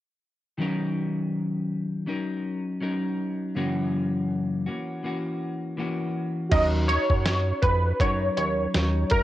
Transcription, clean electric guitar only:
0.58 2.07 D#3 medium
0.58 2.06 F#3 medium
0.58 2.07 C#4 medium
0.58 2.07 D#4 medium
0.58 2.09 A#4 medium
2.06 2.80 F#3 soft
2.06 2.81 C#4 medium
2.06 2.81 D#4 medium
2.06 2.83 A#4 medium
2.80 3.56 F#3 medium
2.80 3.56 C#4 medium
2.80 3.56 D#4 medium
2.80 3.56 A#4 medium
3.55 4.66 F#2 medium
3.55 4.67 C#3 medium
3.55 4.67 E3 medium
3.55 4.68 A#3 medium
3.55 4.67 C#4 medium
3.55 4.66 F#4 medium
4.66 5.02 E3 soft
4.66 5.03 A#3 soft
4.66 5.04 C#4 soft
4.66 5.04 F#4 soft
5.03 5.76 E3 medium
5.03 5.78 A#3 medium
5.03 5.79 C#4 medium
5.03 5.79 F#4 medium
5.77 6.52 E3 medium
5.77 6.52 A#3 medium
5.77 6.53 C#4 medium
5.77 6.53 F#4 medium
6.52 6.89 D#3 medium
6.52 6.89 F#3 medium
6.52 6.89 C#4 medium
6.52 6.89 D#4 medium
6.52 6.90 A#4 medium
6.90 8.00 C#4 soft
6.90 8.00 D#4 soft
8.00 8.74 F#3 medium
8.00 8.75 C#4 medium
8.00 8.75 D#4 medium
8.00 8.76 A#4 medium
8.74 9.23 F#3 medium
8.74 9.23 C#4 soft
8.74 9.23 D#4 medium
8.74 9.23 A#4 medium

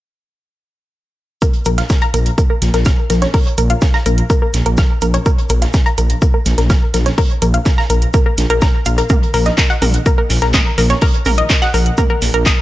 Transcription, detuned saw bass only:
1.66 1.82 A#1 medium
2.14 2.30 A#1 loud
2.62 2.70 A#1 loud
2.74 2.90 A#1 medium
3.10 3.26 A#1 medium
3.58 3.74 A#1 loud
4.06 4.22 A#1 loud
4.54 4.62 A#1 loud
4.66 4.82 A#1 medium
5.02 5.18 A#1 loud
5.50 5.66 A#1 loud
5.98 6.14 A#1 medium
6.46 6.54 A#1 loud
6.58 6.74 A#1 medium
6.94 7.10 A#1 medium
7.42 7.58 A#1 loud
7.90 8.06 A#1 medium
8.38 8.46 A#1 loud
8.50 8.66 A#1 medium
8.86 9.02 A#1 medium
9.34 9.50 A#1 loud
9.82 9.98 A#1 medium
10.30 10.38 A#1 loud
10.42 10.58 A#1 medium
10.78 10.94 A#1 medium
11.26 11.42 A#1 loud
11.74 11.90 A#1 loud
12.22 12.30 A#1 loud
12.34 12.50 A#1 medium

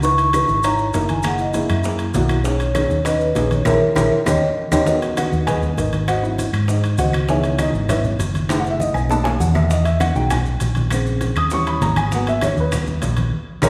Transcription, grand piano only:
0.02 0.24 D#4 medium
0.02 0.24 E4 medium
0.02 0.24 B4 medium
0.33 0.54 D#4 medium
0.33 0.54 E4 medium
0.33 0.55 B4 medium
0.64 0.85 D#4 medium
0.64 0.85 E4 medium
0.64 0.85 C#5 medium
0.93 1.14 D#4 medium
0.93 1.15 E4 medium
0.93 1.15 A#4 medium
1.23 1.44 A#3 medium
1.23 1.45 E4 medium
1.23 1.45 G#4 medium
1.53 1.75 A#3 medium
1.53 1.75 E4 medium
1.53 1.75 G#4 medium
1.84 2.05 A#3 medium
1.84 2.05 E4 medium
1.84 2.05 G#4 medium
2.14 2.35 A#3 medium
2.14 2.35 E4 medium
2.14 2.36 F#4 loud
2.44 2.66 C#4 medium
2.44 2.66 D#4 medium
2.44 2.66 G#4 medium
2.75 2.96 C#4 medium
2.75 2.96 D#4 medium
2.75 2.96 G#4 medium
3.05 3.26 C#4 medium
3.05 3.26 D#4 medium
3.05 3.26 B4 medium
3.36 3.57 C#4 medium
3.36 3.57 D#4 medium
3.36 3.57 G#4 loud
3.66 3.76 E4 loud
3.66 3.76 G#4 medium
3.66 3.76 A#4 loud
3.95 4.05 E4 loud
3.95 4.05 G#4 loud
3.95 4.05 A#4 loud
4.26 4.36 C#4 medium
4.26 4.36 D#4 medium
4.26 4.36 G4 medium
4.72 4.82 C#4 medium
4.72 4.82 D#4 medium
4.72 4.82 G4 medium
4.85 5.29 G#3 soft
4.85 5.29 B3 soft
4.85 5.15 D#4 medium
4.85 5.17 F#4 medium
4.85 5.15 A#4 medium
4.85 5.15 B4 medium
4.85 5.14 D#5 medium
5.17 5.46 F#4 medium
5.17 5.45 B4 medium
5.17 5.45 D#5 medium
5.17 5.45 F#5 medium
5.47 5.75 G#4 medium
5.47 5.75 B4 medium
5.47 5.76 D#5 medium
5.47 5.75 G#5 medium
5.78 6.06 D#4 medium
5.78 6.06 A#4 medium
5.78 6.06 B4 medium
5.78 6.06 D#5 medium
6.08 6.23 F#4 medium
6.08 6.22 C5 medium
6.08 6.22 D#5 medium
6.08 6.22 F#5 medium
6.22 6.43 F#3 medium
6.22 6.43 C4 soft
6.22 6.43 E4 medium
6.69 6.97 D#4 soft
6.69 6.97 G#4 soft
6.69 6.97 C5 soft
6.69 6.97 D#5 medium
6.99 7.27 F#4 medium
6.99 7.27 C5 medium
6.99 7.27 D#5 medium
6.99 7.27 F#5 medium
7.29 8.46 D#3 medium
7.29 8.46 E3 medium
7.29 8.46 B3 medium
7.29 7.58 G#4 medium
7.29 7.58 C#5 medium
7.29 7.58 E5 medium
7.29 7.57 G#5 loud
7.59 7.87 D#4 medium
7.59 7.87 D#5 medium
7.89 7.99 E4 medium
7.89 7.99 B4 medium
7.89 7.98 C#5 medium
7.89 7.98 E5 medium
8.49 8.93 G#3 medium
8.49 8.93 A3 medium
8.49 8.93 E4 medium
8.60 8.70 F#5 medium
8.70 8.80 E5 medium
8.80 8.95 D#5 medium
8.94 9.09 G#5 medium
9.09 9.30 A3 medium
9.09 9.30 C#4 soft
9.09 9.30 D#4 medium
9.09 9.25 A5 loud
9.24 9.39 G#5 loud
9.40 9.55 F#5 medium
9.54 9.69 E5 medium
9.69 9.85 D#5 medium
9.85 10.00 E5 medium
10.00 10.15 F#5 loud
10.15 10.36 F#3 medium
10.15 10.36 G#3 medium
10.15 10.36 D#4 medium
10.15 10.31 G5 medium
10.31 10.40 G#5 medium
10.91 11.49 C#3 medium
10.91 11.49 G#3 soft
10.91 11.49 C4 medium
11.38 11.52 D#6 loud
11.52 11.95 E3 medium
11.52 11.95 G3 soft
11.52 11.96 C#4 medium
11.52 11.67 C#6 loud
11.67 11.82 B5 loud
11.82 11.97 A#5 medium
11.97 12.12 G#5 loud
12.13 12.33 F#3 medium
12.13 12.33 A#3 soft
12.13 12.34 B3 medium
12.13 12.28 F#5 medium
12.28 12.43 E5 loud
12.44 12.58 C#5 medium
12.60 13.30 B4 medium
13.63 13.69 G#4 loud
13.63 13.69 A#4 loud
13.63 13.69 C#5 loud

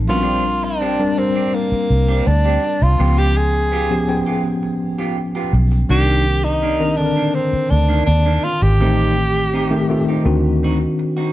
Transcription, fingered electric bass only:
0.09 1.32 A#1 medium
1.72 muted fingered electric bass stroke soft
1.90 2.20 C2 medium
2.27 2.57 D2 medium
2.82 2.97 C2 medium
3.00 4.23 C#2 medium
5.53 5.83 B1 medium
5.90 7.13 C2 medium
7.53 muted fingered electric bass stroke soft
7.71 8.01 D2 medium
8.07 8.37 D#2 medium
8.62 8.80 G#1 medium
8.80 10.03 A1 medium
10.26 10.85 D2 medium

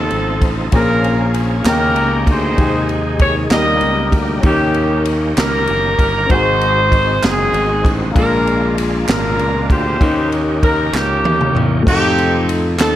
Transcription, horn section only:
0.00 0.70 C4 medium
0.00 0.70 D#4 medium
0.00 0.51 A4 loud
0.75 1.63 C#4 medium
0.75 1.63 F4 medium
0.75 1.32 A#4 medium
1.67 2.56 C#4 medium
1.67 2.56 G4 medium
1.67 2.24 A#4 loud
2.30 3.18 D#4 medium
2.30 3.18 G#4 medium
2.30 2.91 C5 loud
3.22 3.35 C#5 medium
3.53 4.41 G4 medium
3.53 4.41 A#4 medium
3.53 4.18 D#5 loud
4.46 5.34 A#3 medium
4.46 5.34 C#4 medium
4.46 5.03 G4 medium
5.40 6.27 C#4 medium
5.40 6.27 G4 medium
5.40 6.27 A#4 loud
6.31 7.20 D#4 medium
6.31 7.20 F#4 medium
6.31 7.23 C5 loud
7.25 8.13 C4 medium
7.25 8.13 D#4 medium
7.25 7.93 G#4 loud
8.18 9.05 D4 medium
8.18 9.05 F4 medium
8.18 8.74 A#4 loud
9.10 9.98 D4 medium
9.10 9.98 F4 medium
9.10 9.67 A#4 medium
9.71 10.47 G4 medium
9.71 10.32 C5 loud
10.64 10.92 A#4 medium
10.95 11.83 A#3 medium
10.95 11.83 C#4 medium
10.95 11.64 G4 loud
11.88 12.76 C4 medium
11.88 12.76 D#4 medium
11.88 12.45 G4 loud
12.81 12.96 C4 medium
12.81 12.96 D#4 medium
12.81 12.96 A4 loud

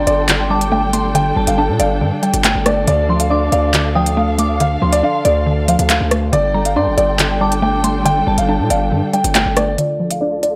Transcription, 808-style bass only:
0.07 1.33 G1 loud
1.37 1.47 G1 loud
1.47 1.70 G1 loud
1.69 1.79 A#2 loud
1.80 2.03 G1 loud
2.01 2.12 G2 loud
2.34 2.54 G1 loud
2.55 2.86 G1 loud
2.88 3.50 D2 loud
3.52 4.78 D2 loud
4.82 5.03 D2 loud
5.25 5.77 D2 loud
5.79 6.00 D2 loud
6.01 6.32 D2 loud
6.33 6.78 G1 loud
6.76 6.88 G2 loud
6.87 6.97 G1 loud
6.98 8.23 G1 loud
8.27 8.37 G1 loud
8.38 8.61 G1 loud
8.60 8.70 A#2 loud
8.70 8.93 G1 loud
8.92 9.02 G2 loud
9.24 9.45 G1 loud
9.46 9.77 G1 loud

